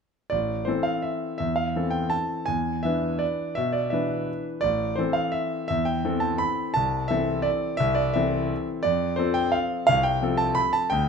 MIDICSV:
0, 0, Header, 1, 2, 480
1, 0, Start_track
1, 0, Key_signature, 0, "minor"
1, 0, Tempo, 358852
1, 424, Time_signature, 3, 2, 24, 8
1, 7629, Tempo, 348028
1, 15053, End_track
2, 0, Start_track
2, 0, Title_t, "Grand piano"
2, 0, Program_c, 0, 0
2, 397, Note_on_c, 0, 74, 70
2, 428, Note_on_c, 0, 33, 39
2, 671, Control_c, 0, 64, 127
2, 869, Note_on_c, 0, 72, 55
2, 891, Note_off_c, 0, 74, 0
2, 892, Note_off_c, 0, 33, 0
2, 906, Note_on_c, 0, 52, 30
2, 909, Note_on_c, 0, 60, 27
2, 916, Note_on_c, 0, 69, 33
2, 917, Control_c, 0, 64, 0
2, 1111, Note_on_c, 0, 77, 61
2, 1133, Note_off_c, 0, 72, 0
2, 1368, Note_on_c, 0, 76, 49
2, 1382, Note_off_c, 0, 77, 0
2, 1824, Note_off_c, 0, 76, 0
2, 1833, Note_off_c, 0, 52, 0
2, 1834, Note_off_c, 0, 60, 0
2, 1838, Note_off_c, 0, 69, 0
2, 1844, Note_on_c, 0, 76, 69
2, 1872, Note_on_c, 0, 40, 43
2, 2083, Note_on_c, 0, 77, 61
2, 2097, Note_off_c, 0, 76, 0
2, 2148, Control_c, 0, 64, 127
2, 2335, Note_off_c, 0, 40, 0
2, 2353, Note_on_c, 0, 52, 29
2, 2357, Note_on_c, 0, 60, 28
2, 2362, Note_on_c, 0, 69, 33
2, 2548, Note_on_c, 0, 79, 59
2, 2583, Note_off_c, 0, 77, 0
2, 2804, Note_on_c, 0, 81, 69
2, 2821, Note_off_c, 0, 79, 0
2, 2868, Control_c, 0, 64, 0
2, 3272, Note_off_c, 0, 52, 0
2, 3274, Note_off_c, 0, 60, 0
2, 3277, Note_off_c, 0, 69, 0
2, 3285, Note_on_c, 0, 80, 70
2, 3306, Note_off_c, 0, 81, 0
2, 3316, Note_on_c, 0, 40, 43
2, 3615, Control_c, 0, 64, 127
2, 3782, Note_on_c, 0, 76, 64
2, 3787, Note_off_c, 0, 80, 0
2, 3788, Note_off_c, 0, 40, 0
2, 3812, Note_on_c, 0, 52, 31
2, 3816, Note_on_c, 0, 62, 31
2, 3822, Note_on_c, 0, 71, 33
2, 4263, Note_on_c, 0, 74, 59
2, 4287, Note_off_c, 0, 76, 0
2, 4315, Control_c, 0, 64, 0
2, 4723, Note_off_c, 0, 52, 0
2, 4725, Note_off_c, 0, 62, 0
2, 4728, Note_off_c, 0, 71, 0
2, 4750, Note_on_c, 0, 76, 75
2, 4756, Note_off_c, 0, 74, 0
2, 4778, Note_on_c, 0, 47, 42
2, 4983, Note_on_c, 0, 74, 54
2, 4994, Note_off_c, 0, 76, 0
2, 5023, Control_c, 0, 64, 127
2, 5219, Note_on_c, 0, 76, 57
2, 5229, Note_off_c, 0, 47, 0
2, 5230, Note_off_c, 0, 74, 0
2, 5250, Note_on_c, 0, 52, 32
2, 5255, Note_on_c, 0, 62, 33
2, 5263, Note_on_c, 0, 71, 38
2, 5743, Control_c, 0, 64, 0
2, 5953, Note_off_c, 0, 76, 0
2, 6147, Note_off_c, 0, 52, 0
2, 6149, Note_off_c, 0, 62, 0
2, 6153, Note_off_c, 0, 71, 0
2, 6163, Note_on_c, 0, 74, 81
2, 6200, Note_on_c, 0, 33, 46
2, 6434, Control_c, 0, 64, 127
2, 6628, Note_on_c, 0, 72, 55
2, 6648, Note_off_c, 0, 74, 0
2, 6652, Note_off_c, 0, 33, 0
2, 6666, Note_on_c, 0, 52, 33
2, 6671, Note_on_c, 0, 60, 32
2, 6676, Note_on_c, 0, 69, 36
2, 6677, Control_c, 0, 64, 0
2, 6864, Note_on_c, 0, 77, 67
2, 6891, Note_off_c, 0, 72, 0
2, 7112, Note_on_c, 0, 76, 62
2, 7133, Note_off_c, 0, 77, 0
2, 7576, Note_off_c, 0, 76, 0
2, 7577, Note_off_c, 0, 52, 0
2, 7580, Note_off_c, 0, 60, 0
2, 7582, Note_off_c, 0, 69, 0
2, 7596, Note_on_c, 0, 76, 81
2, 7628, Note_on_c, 0, 40, 48
2, 7834, Note_on_c, 0, 79, 65
2, 7847, Note_off_c, 0, 76, 0
2, 7910, Control_c, 0, 64, 127
2, 8091, Note_off_c, 0, 40, 0
2, 8102, Note_on_c, 0, 52, 36
2, 8106, Note_on_c, 0, 60, 38
2, 8115, Note_on_c, 0, 69, 39
2, 8315, Note_on_c, 0, 81, 69
2, 8337, Note_off_c, 0, 79, 0
2, 8567, Note_on_c, 0, 83, 79
2, 8582, Note_off_c, 0, 81, 0
2, 8612, Control_c, 0, 64, 0
2, 9026, Note_off_c, 0, 52, 0
2, 9028, Note_off_c, 0, 60, 0
2, 9032, Note_off_c, 0, 69, 0
2, 9054, Note_on_c, 0, 81, 88
2, 9066, Note_off_c, 0, 83, 0
2, 9091, Note_on_c, 0, 36, 51
2, 9380, Control_c, 0, 64, 127
2, 9526, Note_on_c, 0, 76, 76
2, 9541, Note_off_c, 0, 81, 0
2, 9545, Note_off_c, 0, 36, 0
2, 9561, Note_on_c, 0, 52, 35
2, 9565, Note_on_c, 0, 60, 38
2, 9569, Note_on_c, 0, 69, 42
2, 10001, Note_on_c, 0, 74, 76
2, 10031, Note_off_c, 0, 76, 0
2, 10061, Control_c, 0, 64, 0
2, 10476, Note_off_c, 0, 52, 0
2, 10478, Note_off_c, 0, 60, 0
2, 10480, Note_off_c, 0, 69, 0
2, 10481, Note_on_c, 0, 76, 92
2, 10506, Note_off_c, 0, 74, 0
2, 10522, Note_on_c, 0, 36, 57
2, 10723, Note_on_c, 0, 74, 70
2, 10741, Note_off_c, 0, 76, 0
2, 10742, Control_c, 0, 64, 127
2, 10982, Note_on_c, 0, 76, 74
2, 10986, Note_off_c, 0, 74, 0
2, 10989, Note_off_c, 0, 36, 0
2, 11012, Note_on_c, 0, 52, 36
2, 11013, Note_on_c, 0, 60, 41
2, 11022, Note_on_c, 0, 69, 39
2, 11516, Control_c, 0, 64, 0
2, 11723, Note_off_c, 0, 76, 0
2, 11915, Note_off_c, 0, 52, 0
2, 11916, Note_off_c, 0, 60, 0
2, 11920, Note_off_c, 0, 69, 0
2, 11936, Note_on_c, 0, 74, 87
2, 11966, Note_on_c, 0, 41, 55
2, 12228, Control_c, 0, 64, 127
2, 12398, Note_on_c, 0, 72, 69
2, 12423, Note_off_c, 0, 74, 0
2, 12424, Note_off_c, 0, 41, 0
2, 12432, Note_on_c, 0, 53, 40
2, 12439, Note_on_c, 0, 60, 40
2, 12441, Note_on_c, 0, 69, 42
2, 12643, Note_on_c, 0, 79, 82
2, 12661, Note_off_c, 0, 72, 0
2, 12888, Note_on_c, 0, 77, 70
2, 12906, Note_off_c, 0, 79, 0
2, 12940, Control_c, 0, 64, 0
2, 13341, Note_off_c, 0, 53, 0
2, 13345, Note_off_c, 0, 60, 0
2, 13346, Note_off_c, 0, 69, 0
2, 13350, Note_off_c, 0, 77, 0
2, 13371, Note_on_c, 0, 77, 100
2, 13399, Note_on_c, 0, 36, 57
2, 13599, Note_on_c, 0, 79, 76
2, 13620, Note_off_c, 0, 77, 0
2, 13690, Control_c, 0, 64, 127
2, 13859, Note_off_c, 0, 36, 0
2, 13859, Note_on_c, 0, 53, 43
2, 13866, Note_on_c, 0, 60, 42
2, 13869, Note_on_c, 0, 69, 46
2, 14072, Note_on_c, 0, 81, 87
2, 14098, Note_off_c, 0, 79, 0
2, 14310, Note_on_c, 0, 83, 96
2, 14338, Note_off_c, 0, 81, 0
2, 14373, Control_c, 0, 64, 0
2, 14559, Note_on_c, 0, 81, 87
2, 14578, Note_off_c, 0, 83, 0
2, 14774, Note_off_c, 0, 53, 0
2, 14778, Note_off_c, 0, 60, 0
2, 14779, Note_off_c, 0, 69, 0
2, 14792, Note_on_c, 0, 79, 86
2, 14814, Note_off_c, 0, 81, 0
2, 14822, Note_on_c, 0, 38, 57
2, 15053, Note_off_c, 0, 38, 0
2, 15053, Note_off_c, 0, 79, 0
2, 15053, End_track
0, 0, End_of_file